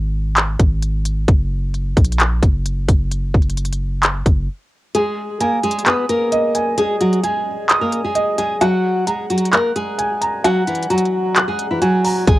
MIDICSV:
0, 0, Header, 1, 5, 480
1, 0, Start_track
1, 0, Tempo, 458015
1, 1344, Time_signature, 4, 2, 24, 8
1, 12987, End_track
2, 0, Start_track
2, 0, Title_t, "Grand piano"
2, 0, Program_c, 0, 0
2, 5182, Note_on_c, 0, 68, 88
2, 5350, Control_c, 0, 64, 127
2, 5664, Note_on_c, 0, 80, 81
2, 6144, Note_on_c, 0, 87, 83
2, 6383, Note_off_c, 0, 68, 0
2, 6625, Note_on_c, 0, 75, 99
2, 6848, Note_off_c, 0, 80, 0
2, 6863, Note_on_c, 0, 80, 80
2, 7104, Note_on_c, 0, 68, 86
2, 7344, Note_off_c, 0, 87, 0
2, 7566, Note_off_c, 0, 80, 0
2, 7582, Note_on_c, 0, 80, 81
2, 7824, Note_off_c, 0, 75, 0
2, 8062, Note_on_c, 0, 87, 88
2, 8304, Note_off_c, 0, 68, 0
2, 8544, Note_on_c, 0, 75, 96
2, 8767, Note_off_c, 0, 80, 0
2, 8783, Note_on_c, 0, 80, 77
2, 9023, Note_off_c, 0, 87, 0
2, 9024, Note_off_c, 0, 75, 0
2, 9024, Note_off_c, 0, 80, 0
2, 9024, Note_on_c, 0, 78, 86
2, 9040, Control_c, 0, 64, 0
2, 9232, Control_c, 0, 64, 127
2, 9503, Note_on_c, 0, 82, 75
2, 9983, Note_on_c, 0, 90, 83
2, 10224, Note_off_c, 0, 78, 0
2, 10463, Note_on_c, 0, 80, 92
2, 10687, Note_off_c, 0, 82, 0
2, 10703, Note_on_c, 0, 82, 79
2, 10943, Note_on_c, 0, 78, 87
2, 11184, Note_off_c, 0, 90, 0
2, 11409, Note_off_c, 0, 82, 0
2, 11424, Note_on_c, 0, 82, 82
2, 11663, Note_off_c, 0, 80, 0
2, 11904, Note_on_c, 0, 90, 84
2, 12143, Note_off_c, 0, 78, 0
2, 12382, Note_on_c, 0, 80, 88
2, 12608, Note_off_c, 0, 82, 0
2, 12624, Note_on_c, 0, 82, 76
2, 12862, Note_on_c, 0, 68, 85
2, 12863, Note_off_c, 0, 80, 0
2, 12864, Note_off_c, 0, 82, 0
2, 12864, Note_off_c, 0, 90, 0
2, 12877, Control_c, 0, 64, 0
2, 12987, Note_off_c, 0, 68, 0
2, 12987, End_track
3, 0, Start_track
3, 0, Title_t, "Nylon-string guitar"
3, 0, Program_c, 1, 24
3, 5183, Note_on_c, 1, 68, 97
3, 5191, Note_on_c, 1, 56, 90
3, 5635, Note_off_c, 1, 68, 0
3, 5639, Note_off_c, 1, 56, 0
3, 5664, Note_on_c, 1, 70, 84
3, 5672, Note_on_c, 1, 58, 61
3, 5850, Note_off_c, 1, 70, 0
3, 5854, Note_off_c, 1, 58, 0
3, 5906, Note_on_c, 1, 68, 80
3, 5914, Note_on_c, 1, 56, 65
3, 6090, Note_off_c, 1, 68, 0
3, 6095, Note_off_c, 1, 56, 0
3, 6145, Note_on_c, 1, 71, 77
3, 6153, Note_on_c, 1, 59, 70
3, 6330, Note_off_c, 1, 71, 0
3, 6335, Note_off_c, 1, 59, 0
3, 6386, Note_on_c, 1, 70, 84
3, 6394, Note_on_c, 1, 58, 63
3, 7063, Note_off_c, 1, 70, 0
3, 7067, Note_off_c, 1, 58, 0
3, 7103, Note_on_c, 1, 68, 96
3, 7111, Note_on_c, 1, 56, 68
3, 7289, Note_off_c, 1, 68, 0
3, 7294, Note_off_c, 1, 56, 0
3, 7343, Note_on_c, 1, 66, 88
3, 7351, Note_on_c, 1, 54, 62
3, 7529, Note_off_c, 1, 66, 0
3, 7534, Note_off_c, 1, 54, 0
3, 7583, Note_on_c, 1, 68, 77
3, 7592, Note_on_c, 1, 56, 60
3, 8154, Note_off_c, 1, 68, 0
3, 8159, Note_off_c, 1, 56, 0
3, 8189, Note_on_c, 1, 70, 76
3, 8197, Note_on_c, 1, 58, 62
3, 8375, Note_off_c, 1, 70, 0
3, 8380, Note_off_c, 1, 58, 0
3, 8431, Note_on_c, 1, 68, 78
3, 8439, Note_on_c, 1, 56, 63
3, 8763, Note_off_c, 1, 68, 0
3, 8767, Note_off_c, 1, 56, 0
3, 8783, Note_on_c, 1, 68, 76
3, 8791, Note_on_c, 1, 56, 58
3, 8969, Note_off_c, 1, 68, 0
3, 8974, Note_off_c, 1, 56, 0
3, 9023, Note_on_c, 1, 66, 111
3, 9032, Note_on_c, 1, 54, 81
3, 9475, Note_off_c, 1, 66, 0
3, 9479, Note_off_c, 1, 54, 0
3, 9506, Note_on_c, 1, 68, 80
3, 9514, Note_on_c, 1, 56, 58
3, 9690, Note_off_c, 1, 68, 0
3, 9695, Note_off_c, 1, 56, 0
3, 9745, Note_on_c, 1, 66, 72
3, 9754, Note_on_c, 1, 54, 57
3, 9930, Note_off_c, 1, 66, 0
3, 9936, Note_off_c, 1, 54, 0
3, 9983, Note_on_c, 1, 70, 88
3, 9992, Note_on_c, 1, 58, 65
3, 10169, Note_off_c, 1, 70, 0
3, 10175, Note_off_c, 1, 58, 0
3, 10225, Note_on_c, 1, 68, 75
3, 10233, Note_on_c, 1, 56, 59
3, 10903, Note_off_c, 1, 68, 0
3, 10906, Note_off_c, 1, 56, 0
3, 10944, Note_on_c, 1, 66, 110
3, 10952, Note_on_c, 1, 54, 86
3, 11129, Note_off_c, 1, 66, 0
3, 11134, Note_off_c, 1, 54, 0
3, 11183, Note_on_c, 1, 64, 69
3, 11191, Note_on_c, 1, 52, 58
3, 11369, Note_off_c, 1, 64, 0
3, 11374, Note_off_c, 1, 52, 0
3, 11422, Note_on_c, 1, 66, 83
3, 11431, Note_on_c, 1, 54, 67
3, 11994, Note_off_c, 1, 66, 0
3, 11998, Note_off_c, 1, 54, 0
3, 12030, Note_on_c, 1, 68, 74
3, 12039, Note_on_c, 1, 56, 59
3, 12216, Note_off_c, 1, 68, 0
3, 12221, Note_off_c, 1, 56, 0
3, 12270, Note_on_c, 1, 64, 80
3, 12278, Note_on_c, 1, 52, 64
3, 12357, Note_off_c, 1, 64, 0
3, 12363, Note_off_c, 1, 52, 0
3, 12383, Note_on_c, 1, 66, 89
3, 12392, Note_on_c, 1, 54, 68
3, 12835, Note_off_c, 1, 66, 0
3, 12839, Note_off_c, 1, 54, 0
3, 12863, Note_on_c, 1, 68, 102
3, 12871, Note_on_c, 1, 56, 91
3, 12987, Note_off_c, 1, 56, 0
3, 12987, Note_off_c, 1, 68, 0
3, 12987, End_track
4, 0, Start_track
4, 0, Title_t, "808-style bass"
4, 0, Program_c, 2, 38
4, 0, Note_on_c, 2, 32, 99
4, 585, Note_off_c, 2, 32, 0
4, 623, Note_on_c, 2, 32, 101
4, 1315, Note_off_c, 2, 32, 0
4, 1343, Note_on_c, 2, 30, 110
4, 2035, Note_off_c, 2, 30, 0
4, 2063, Note_on_c, 2, 34, 108
4, 2525, Note_off_c, 2, 34, 0
4, 2543, Note_on_c, 2, 30, 106
4, 3004, Note_off_c, 2, 30, 0
4, 3023, Note_on_c, 2, 30, 105
4, 3484, Note_off_c, 2, 30, 0
4, 3504, Note_on_c, 2, 30, 102
4, 4426, Note_off_c, 2, 30, 0
4, 4463, Note_on_c, 2, 30, 105
4, 4694, Note_off_c, 2, 30, 0
4, 12864, Note_on_c, 2, 32, 109
4, 12987, Note_off_c, 2, 32, 0
4, 12987, End_track
5, 0, Start_track
5, 0, Title_t, "Drums"
5, 383, Note_on_c, 9, 42, 78
5, 384, Note_on_c, 9, 39, 101
5, 488, Note_off_c, 9, 42, 0
5, 489, Note_off_c, 9, 39, 0
5, 623, Note_on_c, 9, 36, 91
5, 623, Note_on_c, 9, 42, 74
5, 728, Note_off_c, 9, 36, 0
5, 728, Note_off_c, 9, 42, 0
5, 864, Note_on_c, 9, 42, 88
5, 969, Note_off_c, 9, 42, 0
5, 1103, Note_on_c, 9, 42, 83
5, 1208, Note_off_c, 9, 42, 0
5, 1343, Note_on_c, 9, 36, 116
5, 1343, Note_on_c, 9, 42, 81
5, 1447, Note_off_c, 9, 42, 0
5, 1448, Note_off_c, 9, 36, 0
5, 1824, Note_on_c, 9, 42, 78
5, 1929, Note_off_c, 9, 42, 0
5, 2063, Note_on_c, 9, 36, 93
5, 2064, Note_on_c, 9, 42, 65
5, 2144, Note_off_c, 9, 42, 0
5, 2144, Note_on_c, 9, 42, 67
5, 2168, Note_off_c, 9, 36, 0
5, 2224, Note_off_c, 9, 42, 0
5, 2224, Note_on_c, 9, 42, 66
5, 2304, Note_off_c, 9, 42, 0
5, 2304, Note_on_c, 9, 42, 77
5, 2305, Note_on_c, 9, 39, 98
5, 2409, Note_off_c, 9, 42, 0
5, 2410, Note_off_c, 9, 39, 0
5, 2544, Note_on_c, 9, 36, 94
5, 2544, Note_on_c, 9, 42, 67
5, 2648, Note_off_c, 9, 36, 0
5, 2649, Note_off_c, 9, 42, 0
5, 2785, Note_on_c, 9, 42, 88
5, 2890, Note_off_c, 9, 42, 0
5, 3024, Note_on_c, 9, 36, 89
5, 3024, Note_on_c, 9, 42, 87
5, 3128, Note_off_c, 9, 36, 0
5, 3129, Note_off_c, 9, 42, 0
5, 3264, Note_on_c, 9, 42, 83
5, 3369, Note_off_c, 9, 42, 0
5, 3504, Note_on_c, 9, 36, 100
5, 3504, Note_on_c, 9, 42, 44
5, 3585, Note_off_c, 9, 42, 0
5, 3585, Note_on_c, 9, 42, 48
5, 3609, Note_off_c, 9, 36, 0
5, 3664, Note_off_c, 9, 42, 0
5, 3664, Note_on_c, 9, 42, 53
5, 3744, Note_off_c, 9, 42, 0
5, 3744, Note_on_c, 9, 42, 63
5, 3825, Note_off_c, 9, 42, 0
5, 3825, Note_on_c, 9, 42, 69
5, 3904, Note_off_c, 9, 42, 0
5, 3904, Note_on_c, 9, 42, 72
5, 4009, Note_off_c, 9, 42, 0
5, 4224, Note_on_c, 9, 42, 81
5, 4225, Note_on_c, 9, 39, 97
5, 4329, Note_off_c, 9, 39, 0
5, 4329, Note_off_c, 9, 42, 0
5, 4464, Note_on_c, 9, 36, 90
5, 4464, Note_on_c, 9, 42, 74
5, 4568, Note_off_c, 9, 36, 0
5, 4569, Note_off_c, 9, 42, 0
5, 5184, Note_on_c, 9, 42, 82
5, 5289, Note_off_c, 9, 42, 0
5, 5664, Note_on_c, 9, 42, 79
5, 5769, Note_off_c, 9, 42, 0
5, 5905, Note_on_c, 9, 42, 66
5, 5985, Note_off_c, 9, 42, 0
5, 5985, Note_on_c, 9, 42, 65
5, 6065, Note_off_c, 9, 42, 0
5, 6065, Note_on_c, 9, 42, 66
5, 6144, Note_off_c, 9, 42, 0
5, 6144, Note_on_c, 9, 39, 101
5, 6144, Note_on_c, 9, 42, 80
5, 6249, Note_off_c, 9, 39, 0
5, 6249, Note_off_c, 9, 42, 0
5, 6385, Note_on_c, 9, 42, 69
5, 6489, Note_off_c, 9, 42, 0
5, 6625, Note_on_c, 9, 42, 86
5, 6730, Note_off_c, 9, 42, 0
5, 6865, Note_on_c, 9, 42, 89
5, 6970, Note_off_c, 9, 42, 0
5, 7105, Note_on_c, 9, 42, 81
5, 7210, Note_off_c, 9, 42, 0
5, 7345, Note_on_c, 9, 42, 68
5, 7450, Note_off_c, 9, 42, 0
5, 7472, Note_on_c, 9, 42, 41
5, 7577, Note_off_c, 9, 42, 0
5, 7584, Note_on_c, 9, 42, 76
5, 7689, Note_off_c, 9, 42, 0
5, 8064, Note_on_c, 9, 42, 79
5, 8065, Note_on_c, 9, 39, 96
5, 8169, Note_off_c, 9, 39, 0
5, 8169, Note_off_c, 9, 42, 0
5, 8304, Note_on_c, 9, 42, 76
5, 8409, Note_off_c, 9, 42, 0
5, 8544, Note_on_c, 9, 42, 85
5, 8649, Note_off_c, 9, 42, 0
5, 8784, Note_on_c, 9, 42, 83
5, 8889, Note_off_c, 9, 42, 0
5, 9024, Note_on_c, 9, 42, 82
5, 9129, Note_off_c, 9, 42, 0
5, 9504, Note_on_c, 9, 42, 79
5, 9609, Note_off_c, 9, 42, 0
5, 9744, Note_on_c, 9, 42, 65
5, 9824, Note_off_c, 9, 42, 0
5, 9824, Note_on_c, 9, 42, 68
5, 9904, Note_off_c, 9, 42, 0
5, 9904, Note_on_c, 9, 42, 67
5, 9984, Note_off_c, 9, 42, 0
5, 9984, Note_on_c, 9, 42, 78
5, 9985, Note_on_c, 9, 39, 96
5, 10089, Note_off_c, 9, 39, 0
5, 10089, Note_off_c, 9, 42, 0
5, 10224, Note_on_c, 9, 42, 70
5, 10329, Note_off_c, 9, 42, 0
5, 10465, Note_on_c, 9, 42, 87
5, 10570, Note_off_c, 9, 42, 0
5, 10704, Note_on_c, 9, 42, 85
5, 10809, Note_off_c, 9, 42, 0
5, 10944, Note_on_c, 9, 42, 85
5, 11049, Note_off_c, 9, 42, 0
5, 11184, Note_on_c, 9, 42, 44
5, 11264, Note_off_c, 9, 42, 0
5, 11264, Note_on_c, 9, 42, 49
5, 11345, Note_off_c, 9, 42, 0
5, 11345, Note_on_c, 9, 42, 54
5, 11424, Note_off_c, 9, 42, 0
5, 11424, Note_on_c, 9, 42, 62
5, 11504, Note_off_c, 9, 42, 0
5, 11504, Note_on_c, 9, 42, 65
5, 11584, Note_off_c, 9, 42, 0
5, 11584, Note_on_c, 9, 42, 72
5, 11688, Note_off_c, 9, 42, 0
5, 11905, Note_on_c, 9, 39, 96
5, 11905, Note_on_c, 9, 42, 76
5, 12010, Note_off_c, 9, 39, 0
5, 12010, Note_off_c, 9, 42, 0
5, 12145, Note_on_c, 9, 42, 77
5, 12249, Note_off_c, 9, 42, 0
5, 12384, Note_on_c, 9, 42, 85
5, 12489, Note_off_c, 9, 42, 0
5, 12624, Note_on_c, 9, 46, 85
5, 12729, Note_off_c, 9, 46, 0
5, 12864, Note_on_c, 9, 36, 117
5, 12864, Note_on_c, 9, 42, 84
5, 12969, Note_off_c, 9, 36, 0
5, 12969, Note_off_c, 9, 42, 0
5, 12987, End_track
0, 0, End_of_file